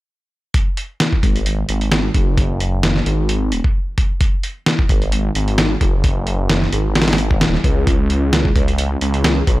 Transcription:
0.54 kick, closed hi-hat
0.77 closed hi-hat
1.00 snare, closed hi-hat
1.13 kick
1.23 G#1, kick, closed hi-hat
1.36 closed hi-hat
1.46 closed hi-hat
1.69 G#1, closed hi-hat
1.81 closed hi-hat
1.92 snare, closed hi-hat
2.14 F#1, kick, closed hi-hat
2.38 kick, closed hi-hat
2.60 closed hi-hat
2.83 snare, closed hi-hat
2.96 snare
3.06 G#1, closed hi-hat
3.29 closed hi-hat
3.52 D#1, closed hi-hat
3.64 kick
3.98 kick, closed hi-hat
4.21 kick, closed hi-hat
4.43 closed hi-hat
4.66 snare, closed hi-hat
4.79 kick
4.89 G#1, kick, closed hi-hat
5.02 closed hi-hat
5.12 closed hi-hat
5.35 G#1, closed hi-hat
5.48 closed hi-hat
5.58 snare, closed hi-hat
5.81 F#1, kick, closed hi-hat
6.04 kick, closed hi-hat
6.27 closed hi-hat
6.50 snare, closed hi-hat
6.62 snare
6.72 G#1, closed hi-hat
6.95 G#1, snare, closed hi-hat
7.02 snare, closed hi-hat
7.08 snare, closed hi-hat
7.13 snare, closed hi-hat
7.18 closed hi-hat
7.31 kick
7.41 D#1, snare, closed hi-hat
7.54 snare
7.64 C#2, kick, closed hi-hat
7.87 kick, closed hi-hat
8.10 closed hi-hat
8.33 snare, closed hi-hat
8.45 kick
8.56 C#2, kick, closed hi-hat
8.68 closed hi-hat
8.78 closed hi-hat
9.01 C#2, closed hi-hat
9.14 closed hi-hat
9.24 snare, closed hi-hat
9.47 B1, kick, closed hi-hat

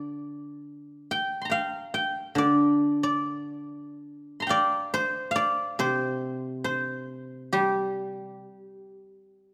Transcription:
Already playing: D3 D5
1.11 G5
1.42 A#5 C6
1.50 F5 G5
1.94 G5
2.35 D3 D5
3.03 D5
4.40 A#5 C6
4.47 D5 F5 G5
4.94 C5
5.31 F5
5.36 D5
5.79 C3 C5
6.64 C5
7.53 G3 G4

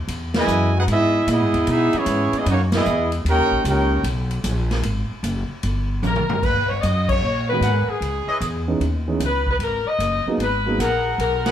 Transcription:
0.08 E2, ride
0.34 B2 E3 E4 D#5, snare, ride
0.38 G#3 B4 G#5
0.47 F#2, hi-hat pedal
0.76 D#4 F#4 G#4 B4 F#5
0.87 G#2 G#3 B3 E5, ride
0.91 B3 E4 G#4 D#5
1.27 A#2 G#3 B3 E4, hi-hat pedal, ride
1.31 B3 E4 G#4 D#5
1.40 G#2
1.54 E2, ride
1.67 B2 G#3 B3 D#4 E4 G#4, ride
1.71 B3 E5
1.93 E3 G#3 C#4, muted upright bass stroke, ride
1.98 B3 E4 G#4 C#5
2.06 G#2, hi-hat pedal, ride
2.33 muted upright bass stroke, ride
2.37 G#3 B3 D#4 E4 G#4 D#5
2.46 F#2 C#4, ride
2.50 A#3 D#4 F#4 C#5
2.72 G#3 B3 E4, snare, ride
2.76 B3 E4 G#4 D#5
2.85 E2, hi-hat pedal
3.12 ride
3.25 D#2 A#3 C#4 G4 G5, ride
3.29 D#4 A#4 C#5
3.38 C#2
3.51 A#1
3.64 C#2 A#3 C#4 G4, hi-hat pedal, ride
3.69 D#4 A#4 C#5 G5
4.03 B1, ride
4.31 ride
4.44 A#1, hi-hat pedal, ride
4.71 snare, ride
4.83 G#1, ride
5.09 muted upright bass stroke
5.23 F#1, hi-hat pedal, ride
5.49 muted upright bass stroke
5.63 G1, ride
6.02 A#1 A#4, hi-hat pedal, high tom
6.16 mid tom
6.29 muted upright bass stroke, floor tom
6.42 D#2 B4, kick, crash
6.57 B1
6.69 G#1 C#5
6.82 F#2 D#5, hi-hat pedal, ride
7.09 C#5, kick, crash
7.23 A#2
7.49 D#3 G#3 A#3 B3 F#4 B4
7.61 G#2 G#4 A#4 B4 F#5, hi-hat pedal, ride
7.88 G#4, muted upright bass stroke
8.01 C#2, ride
8.27 E4 B4 C#5 D#5, muted upright bass stroke
8.41 E2, hi-hat pedal, ride
8.68 E3 B3 C#4 D#4 G#4
8.80 D#2, ride
9.08 E3 B3 C#4 D#4 G#4
9.20 C#2, hi-hat pedal, ride
9.26 B4
9.47 kick
9.51 B4
9.59 G#1, ride
9.63 A#4
9.85 D#5, muted upright bass stroke
9.99 F#1, hi-hat pedal, ride
10.26 F#3 A#3 B3 D#4 G#4, muted upright bass stroke
10.38 G#1, ride
10.43 B4
10.66 F#3 A#3 B3 D#4 G#4
10.78 A#1 B3 G#4 A#4 F#5, hi-hat pedal, ride
11.18 B1 A#4, ride
11.45 G#4 A#4 B4 F#5, snare, ride

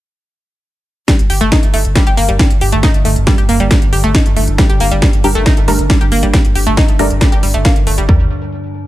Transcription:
1.08 G2 D3 G3, kick, snare, closed hi-hat
1.19 G1, closed hi-hat
1.30 G1 G4, open hi-hat
1.41 G1 A3, closed hi-hat
1.52 D#4, kick, snare, closed hi-hat
1.63 G1, closed hi-hat
1.74 G1 A3, open hi-hat
1.85 G1, closed hi-hat
1.95 G3, kick, snare, closed hi-hat
2.07 G1 G4, closed hi-hat
2.17 G1 A#3, open hi-hat
2.29 G1 G3, closed hi-hat
2.39 G3, kick, snare, closed hi-hat
2.50 G1, closed hi-hat
2.61 G1 G4, open hi-hat
2.72 G1 A3, closed hi-hat
2.83 D#4, kick, snare, closed hi-hat
2.94 G1, closed hi-hat
3.05 G1 A3, open hi-hat
3.16 G1, closed hi-hat
3.27 G3, kick, snare, closed hi-hat
3.38 G1 G4, closed hi-hat
3.49 G1 A#3, open hi-hat
3.60 G1 G3, closed hi-hat
3.71 G3, kick, snare, closed hi-hat
3.82 G1, closed hi-hat
3.93 G1 G4, open hi-hat
4.04 G1 A3, closed hi-hat
4.15 D#4, kick, snare, closed hi-hat
4.26 G1, closed hi-hat
4.36 G1 A3, open hi-hat
4.48 G1, closed hi-hat
4.58 G3, kick, snare, closed hi-hat
4.69 G1 G4, closed hi-hat
4.80 G1 A#3, open hi-hat
4.91 G1 G3, closed hi-hat
5.02 G3, kick, snare, closed hi-hat
5.13 G1, closed hi-hat
5.24 G1 G3 D4 G4 A#4, open hi-hat
5.35 G1 A3, closed hi-hat
5.46 D#4, kick, snare, closed hi-hat
5.57 G1, closed hi-hat
5.68 G1 G3 A3 D4 A#4, open hi-hat
5.79 G1, closed hi-hat
5.90 G3, kick, snare, closed hi-hat
6.01 G1 G4, closed hi-hat
6.12 G1 A#3, open hi-hat
6.23 G1 G3, closed hi-hat
6.33 G3, kick, snare, closed hi-hat
6.45 G1, closed hi-hat
6.55 G1 G4, open hi-hat
6.67 G1 A3, closed hi-hat
6.77 D#4, kick, snare, closed hi-hat
6.88 G1, closed hi-hat
6.99 G1 G3 A3 D4 A#4, open hi-hat
7.10 G1, closed hi-hat
7.21 G3, kick, snare, closed hi-hat
7.32 G1 G4, closed hi-hat
7.43 G1 G3, open hi-hat
7.54 G1 A3, closed hi-hat
7.65 A#3, kick, snare, closed hi-hat
7.76 G1, closed hi-hat
7.87 G1 A3, open hi-hat
7.98 G1 G3, closed hi-hat
8.09 G1 G3 D4 A#4, kick, floor tom

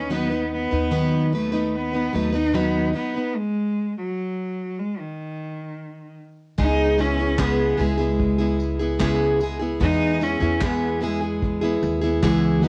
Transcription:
Already playing: D#2 C#4 B4
0.10 D#3 F#3 B3 D#4 B4
0.30 B3 D#4 B4
0.53 B3
0.71 D#2 B3 D#4 B4
0.91 D#3 F#3 B3 D#4 B4
1.32 F#3 A3 B3 D#4 B4
1.52 B3 D#4 B4
1.75 B3
1.93 B3 D#4 B4
2.13 D#2 F#3 A3 B3 D#4 B4
2.32 B3 D#4 B4
2.53 D#3 F#3 B3 D#4 B4
2.93 F#3 B3 D#4 B4
3.14 B3 D#4 B4
3.36 G#3
3.98 F#3
4.79 G#3
4.99 D#3
6.58 C#2 C#3 G#3 B3 D#4 G#4, kick
6.98 G#3 B3 C#4 E4 G#4, tambourine
7.18 B3 E4 G#4
7.38 C#3 G#3 B3 E4 G#4, kick, clap
7.77 C#2 G#3 B3 E4 G#4, tambourine
7.98 B3 E4 G#4
8.20 kick
8.38 B3 E4 G#4
8.60 tambourine
8.79 B3 E4 G#4
8.99 C#3 G#3 B3 E4 G#4, kick, clap
9.40 G#3 B3 E4 G#4, tambourine
9.59 B3 E4 G#4
9.80 E2 E3 G#3 B3 D#4 G#4, kick
10.20 G#3 B3 C#4 E4 G#4, tambourine
10.40 E2 B3 E4 G#4
10.61 E3 G#3 B3 E4 G#4, kick, clap
11.01 G#3 B3 E4 G#4, tambourine
11.05 G#3
11.21 B3 E4 G#4
11.42 kick
11.61 B3 E4 G#4
11.83 D#2, tambourine
12.02 B3 E4 G#4
12.23 C#2 E3 G#3 B3 E4 G#4, kick, clap
12.62 D#2 F#3 B3 D#4 B4, tambourine

